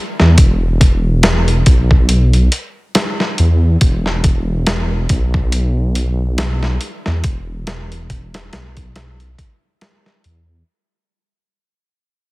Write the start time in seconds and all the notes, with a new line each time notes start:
0.20 E2, snare
0.38 E1, kick, closed hi-hat
0.81 kick, closed hi-hat
1.23 snare, closed hi-hat
1.48 closed hi-hat
1.66 B1, kick, closed hi-hat
1.91 kick
2.09 closed hi-hat
2.33 closed hi-hat
2.52 closed hi-hat
2.95 snare, closed hi-hat
3.20 snare
3.38 E2, closed hi-hat
3.81 E1, kick, closed hi-hat
4.06 snare
4.24 kick, closed hi-hat
4.67 snare, closed hi-hat
5.09 B1, kick, closed hi-hat
5.34 kick
5.52 closed hi-hat
5.95 closed hi-hat
6.38 snare, closed hi-hat
6.63 snare
6.81 closed hi-hat
7.06 E2, snare
7.24 E1, kick, closed hi-hat
7.67 snare, closed hi-hat
7.92 closed hi-hat
8.10 kick, closed hi-hat
8.34 snare, closed hi-hat
8.53 B1, snare, closed hi-hat
8.77 kick, closed hi-hat
8.96 snare, closed hi-hat
9.20 closed hi-hat
9.38 kick, closed hi-hat
9.81 snare, closed hi-hat
10.06 snare
10.24 E2, closed hi-hat